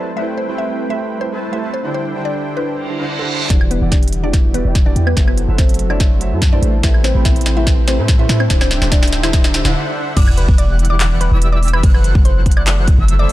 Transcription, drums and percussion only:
3.50 kick, snare, closed hi-hat
3.61 high woodblock
3.71 closed hi-hat
3.92 kick, snare, closed hi-hat
4.03 closed hi-hat
4.08 closed hi-hat
4.13 closed hi-hat
4.33 kick, snare, closed hi-hat
4.54 closed hi-hat
4.75 kick, snare, closed hi-hat
4.96 closed hi-hat
5.07 high woodblock
5.17 kick, snare, closed hi-hat
5.28 high woodblock
5.38 closed hi-hat
5.58 kick, snare, closed hi-hat
5.69 closed hi-hat
5.74 closed hi-hat
5.79 closed hi-hat
5.90 high woodblock
6.00 kick, snare, closed hi-hat
6.21 closed hi-hat
6.42 kick, snare, closed hi-hat
6.63 closed hi-hat
6.83 kick, snare, closed hi-hat
6.94 high woodblock
7.04 snare, closed hi-hat
7.25 kick, snare, closed hi-hat
7.36 closed hi-hat
7.41 closed hi-hat
7.46 snare, closed hi-hat
7.67 kick, snare, closed hi-hat
7.88 snare, closed hi-hat
8.08 kick, snare, closed hi-hat
8.29 snare, closed hi-hat
8.40 high woodblock
8.50 kick, snare, closed hi-hat
8.61 snare, high woodblock
8.71 snare, closed hi-hat
8.82 snare
8.92 kick, snare, closed hi-hat
9.03 snare, closed hi-hat
9.07 closed hi-hat
9.12 snare, closed hi-hat
9.23 snare, high woodblock
9.33 kick, snare, closed hi-hat
9.44 snare
9.54 snare, closed hi-hat
9.65 snare
10.17 kick, closed hi-hat, crash
10.28 high woodblock
10.37 closed hi-hat
10.48 kick
10.58 closed hi-hat
10.79 closed hi-hat
10.85 closed hi-hat
11.00 clap, closed hi-hat, crash
11.21 closed hi-hat
11.42 closed hi-hat
11.63 open hi-hat
11.68 closed hi-hat
11.74 high woodblock
11.83 kick, closed hi-hat, crash
11.94 high woodblock
12.04 closed hi-hat
12.15 kick
12.25 closed hi-hat
12.46 kick, closed hi-hat
12.51 closed hi-hat
12.57 high woodblock
12.67 clap, closed hi-hat, crash
12.88 kick, closed hi-hat
13.08 closed hi-hat
13.29 open hi-hat

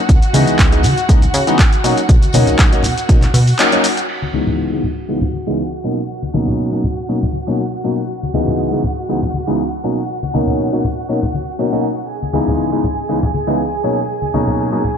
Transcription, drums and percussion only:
0.09 kick, closed hi-hat, tambourine, shaker
0.22 closed hi-hat, tambourine, shaker
0.33 open hi-hat, tambourine, high conga, shaker
0.47 closed hi-hat, tambourine, shaker
0.59 kick, clap, closed hi-hat, tambourine, shaker
0.72 closed hi-hat, tambourine, shaker
0.83 open hi-hat, tambourine, low conga, shaker
0.97 closed hi-hat, tambourine, shaker
1.09 kick, closed hi-hat, tambourine, shaker
1.22 closed hi-hat, tambourine, low conga, shaker
1.33 open hi-hat, tambourine, high conga, shaker
1.47 closed hi-hat, tambourine, shaker
1.59 kick, clap, closed hi-hat, tambourine, shaker
1.72 closed hi-hat, tambourine, shaker
1.84 open hi-hat, tambourine, shaker
1.97 closed hi-hat, tambourine, shaker
2.09 kick, closed hi-hat, tambourine, shaker
2.22 closed hi-hat, tambourine, high conga, shaker
2.33 open hi-hat, tambourine, high conga, shaker
2.47 closed hi-hat, tambourine, low conga, shaker
2.59 kick, clap, closed hi-hat, shaker
2.73 closed hi-hat, tambourine, shaker
2.83 open hi-hat, tambourine, low conga, shaker
2.96 closed hi-hat, tambourine, shaker
3.09 kick, closed hi-hat, tambourine, shaker
3.22 clap, closed hi-hat, tambourine, low conga, shaker
3.34 open hi-hat, tambourine, high conga, shaker
3.47 open hi-hat, tambourine, shaker
3.59 clap, closed hi-hat, tambourine, shaker
3.72 closed hi-hat, tambourine, shaker
3.84 open hi-hat, tambourine, shaker
3.97 closed hi-hat, tambourine, shaker
4.09 tambourine, crash
4.22 tambourine, high conga
4.34 tambourine, high conga
4.47 tambourine, low conga
4.59 tambourine
4.84 tambourine, low conga
4.97 tambourine
5.21 tambourine, low conga
5.34 tambourine, high conga
5.73 tambourine
6.09 tambourine
6.23 tambourine, high conga
6.34 tambourine, high conga
6.47 tambourine, low conga
6.73 tambourine
6.84 tambourine, low conga
6.98 tambourine
7.22 tambourine, low conga
7.33 tambourine, high conga
7.47 tambourine
7.59 tambourine
7.73 tambourine
7.84 tambourine
7.98 tambourine
8.10 tambourine
8.22 tambourine, high conga
8.34 tambourine, high conga
8.47 tambourine, low conga
8.60 tambourine
8.73 tambourine
8.84 tambourine, low conga
8.97 tambourine
9.09 tambourine
9.23 tambourine, low conga
9.34 tambourine, high conga
9.48 tambourine
9.59 tambourine
9.72 tambourine
9.84 tambourine
9.98 tambourine
10.10 tambourine
10.23 tambourine, high conga
10.34 tambourine, high conga
10.47 tambourine, low conga
10.60 tambourine
10.73 tambourine
10.84 tambourine, low conga
10.98 tambourine
11.09 tambourine
11.22 tambourine, low conga
11.34 tambourine, high conga
11.48 tambourine
11.59 tambourine
11.85 tambourine
11.97 tambourine
12.09 tambourine
12.22 tambourine, high conga
12.33 tambourine, high conga
12.47 tambourine, low conga
12.59 tambourine
12.72 tambourine
12.84 tambourine, low conga
12.98 tambourine
13.09 tambourine
13.23 tambourine, low conga
13.34 tambourine, high conga
13.47 tambourine
13.59 tambourine
13.72 tambourine
13.84 tambourine
13.97 tambourine
14.09 tambourine
14.22 tambourine, high conga
14.33 tambourine, high conga
14.47 tambourine, low conga
14.59 tambourine
14.72 tambourine
14.84 tambourine, low conga

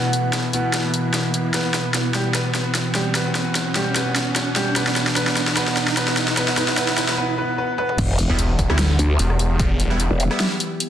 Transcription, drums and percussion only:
0.13 closed hi-hat
0.33 snare, closed hi-hat
0.53 closed hi-hat
0.74 snare, closed hi-hat
0.94 closed hi-hat
1.14 snare, closed hi-hat
1.34 closed hi-hat
1.54 snare, closed hi-hat
1.74 snare, closed hi-hat
1.94 snare, closed hi-hat
2.14 snare, closed hi-hat
2.35 snare, closed hi-hat
2.55 snare, closed hi-hat
2.75 snare, closed hi-hat
2.95 snare, closed hi-hat
3.15 snare, closed hi-hat
3.35 snare, closed hi-hat
3.55 snare, closed hi-hat
3.75 snare, closed hi-hat
3.96 snare, closed hi-hat
4.16 snare, closed hi-hat
4.36 snare, closed hi-hat
4.56 snare, closed hi-hat
4.76 snare, closed hi-hat
4.87 snare
4.96 snare, closed hi-hat
5.07 snare
5.16 snare, closed hi-hat
5.27 snare
5.37 snare, closed hi-hat
5.48 snare
5.57 snare, closed hi-hat
5.68 snare
5.77 snare, closed hi-hat
5.88 snare
5.97 snare, closed hi-hat
6.08 snare
6.17 snare, closed hi-hat
6.28 snare
6.37 snare, closed hi-hat
6.48 snare
6.57 snare, closed hi-hat
6.68 snare
6.78 snare, closed hi-hat
6.88 snare
6.98 snare, closed hi-hat
7.09 snare
7.78 high tom
7.89 mid tom
7.98 kick, closed hi-hat, crash
8.19 closed hi-hat
8.39 closed hi-hat
8.59 kick, closed hi-hat
8.70 cross-stick
8.79 snare, closed hi-hat
8.99 closed hi-hat
9.19 closed hi-hat
9.30 cross-stick
9.39 closed hi-hat
9.59 kick, closed hi-hat
9.80 closed hi-hat
10.00 closed hi-hat
10.20 closed hi-hat
10.31 cross-stick
10.40 snare, closed hi-hat
10.60 closed hi-hat
10.80 closed hi-hat

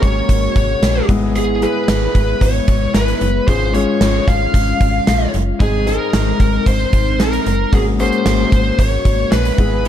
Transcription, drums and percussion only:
0.03 kick, closed hi-hat
0.29 kick, closed hi-hat
0.56 kick, closed hi-hat
0.83 snare, closed hi-hat
1.09 kick, closed hi-hat
1.35 closed hi-hat
1.62 closed hi-hat
1.88 snare, closed hi-hat
2.15 kick, closed hi-hat
2.41 kick, closed hi-hat
2.68 kick, closed hi-hat
2.94 snare, closed hi-hat
3.08 closed hi-hat
3.21 closed hi-hat
3.48 kick, closed hi-hat
3.74 closed hi-hat
4.01 snare, closed hi-hat
4.28 kick, closed hi-hat
4.54 kick, closed hi-hat
4.81 kick, closed hi-hat
5.07 snare, closed hi-hat
5.34 closed hi-hat
5.60 kick, closed hi-hat
5.87 closed hi-hat
6.13 snare, closed hi-hat
6.40 kick, closed hi-hat
6.66 kick, closed hi-hat
6.93 kick, closed hi-hat
7.20 snare, closed hi-hat
7.33 closed hi-hat
7.46 closed hi-hat
7.73 kick, closed hi-hat
7.99 closed hi-hat
8.12 closed hi-hat
8.26 snare, closed hi-hat
8.52 kick, closed hi-hat
8.79 kick, closed hi-hat
9.05 kick, closed hi-hat
9.32 snare, closed hi-hat
9.45 closed hi-hat
9.58 kick, closed hi-hat
9.85 closed hi-hat

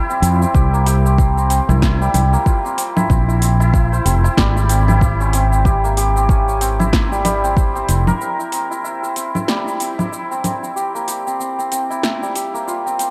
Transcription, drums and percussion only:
0.10 shaker
0.23 open hi-hat, shaker
0.42 shaker
0.55 kick, shaker
0.74 shaker
0.86 open hi-hat, shaker
1.06 shaker
1.18 kick, shaker
1.38 shaker
1.50 open hi-hat, shaker
1.69 low conga, shaker
1.82 kick, snare, shaker
2.02 shaker
2.14 open hi-hat, low conga, shaker
2.34 shaker
2.46 kick, shaker
2.66 shaker
2.78 open hi-hat, shaker
2.97 low conga, shaker
3.10 kick, shaker
3.30 shaker
3.42 open hi-hat, shaker
3.61 shaker
3.74 kick, shaker
3.94 shaker
4.06 open hi-hat, shaker
4.25 shaker
4.37 kick, snare, shaker
4.57 shaker
4.69 open hi-hat, shaker
4.88 low conga, shaker
5.01 kick, shaker
5.21 shaker
5.33 open hi-hat, shaker
5.53 shaker
5.65 kick, shaker
5.85 shaker
5.97 open hi-hat, shaker
6.17 shaker
6.29 kick, shaker
6.49 shaker
6.61 open hi-hat, shaker
6.80 low conga, shaker
6.93 kick, snare, shaker
7.13 shaker
7.25 open hi-hat, low conga, shaker
7.44 shaker
7.57 kick, shaker
7.76 shaker
7.89 open hi-hat, shaker
8.07 low conga, shaker
8.21 shaker
8.40 shaker
8.52 open hi-hat, shaker
8.72 shaker
8.85 shaker
9.04 shaker
9.16 open hi-hat, shaker
9.35 low conga, shaker
9.48 snare, shaker
9.68 shaker
9.80 open hi-hat, shaker
9.99 low conga, shaker
10.13 shaker
10.32 shaker
10.44 open hi-hat, low conga, shaker
10.64 shaker
10.77 shaker
10.96 shaker
11.08 open hi-hat, shaker
11.27 shaker
11.41 shaker
11.60 shaker
11.72 open hi-hat, shaker
11.91 shaker
12.03 snare, shaker
12.23 shaker
12.35 open hi-hat, shaker
12.55 shaker
12.68 shaker
12.87 shaker
12.99 open hi-hat, shaker

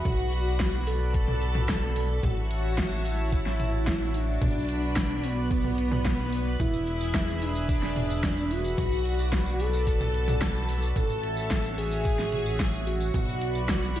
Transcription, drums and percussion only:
0.05 kick, closed hi-hat, mid tom
0.33 closed hi-hat
0.60 kick, snare, closed hi-hat
0.87 open hi-hat
1.14 kick, closed hi-hat
1.28 mid tom
1.42 closed hi-hat
1.55 mid tom
1.69 kick, snare, closed hi-hat
1.96 open hi-hat
2.23 kick, closed hi-hat, mid tom
2.51 closed hi-hat
2.78 kick, snare, closed hi-hat
3.05 open hi-hat
3.32 kick, closed hi-hat
3.46 snare
3.60 closed hi-hat, mid tom
3.87 kick, snare, closed hi-hat
4.14 open hi-hat
4.41 kick, closed hi-hat, mid tom
4.69 closed hi-hat
4.96 kick, snare, closed hi-hat
5.23 open hi-hat
5.51 kick, closed hi-hat
5.64 mid tom
5.78 closed hi-hat
5.92 mid tom
6.05 kick, snare, closed hi-hat
6.33 open hi-hat
6.60 kick, closed hi-hat, mid tom, tambourine
6.73 tambourine
6.87 closed hi-hat
7.01 tambourine
7.14 kick, snare, closed hi-hat, tambourine
7.28 tambourine
7.42 open hi-hat
7.55 tambourine
7.69 kick, closed hi-hat, tambourine
7.83 snare, tambourine
7.96 closed hi-hat, mid tom
8.10 tambourine
8.23 kick, snare, closed hi-hat, tambourine
8.37 tambourine
8.51 open hi-hat
8.65 tambourine
8.78 kick, closed hi-hat, mid tom, tambourine
8.92 tambourine
9.05 closed hi-hat
9.19 tambourine
9.32 kick, snare, closed hi-hat, tambourine
9.46 tambourine
9.60 open hi-hat
9.73 tambourine
9.87 kick, closed hi-hat, tambourine
10.01 mid tom, tambourine
10.14 closed hi-hat
10.28 mid tom, tambourine
10.41 kick, snare, closed hi-hat, tambourine
10.55 tambourine
10.69 open hi-hat
10.82 tambourine
10.96 kick, closed hi-hat, mid tom, tambourine
11.10 tambourine
11.23 closed hi-hat
11.37 tambourine
11.51 kick, snare, closed hi-hat, tambourine
11.64 tambourine
11.78 open hi-hat
11.91 tambourine
12.05 kick, closed hi-hat, tambourine
12.19 snare, tambourine
12.32 closed hi-hat, mid tom
12.46 tambourine
12.60 kick, snare, closed hi-hat, tambourine
12.73 tambourine
12.87 open hi-hat
13.01 tambourine
13.14 kick, closed hi-hat, mid tom, tambourine
13.28 tambourine
13.41 closed hi-hat
13.55 tambourine
13.69 kick, snare, closed hi-hat, tambourine
13.82 tambourine
13.96 open hi-hat

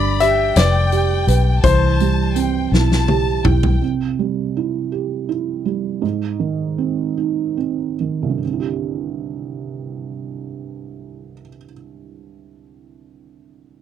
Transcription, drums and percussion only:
0.20 closed hi-hat
0.56 snare, closed hi-hat
0.92 closed hi-hat
1.28 closed hi-hat
1.64 kick, closed hi-hat
2.00 closed hi-hat
2.36 closed hi-hat
2.74 snare
2.92 snare
3.08 high tom
3.45 mid tom
3.63 floor tom

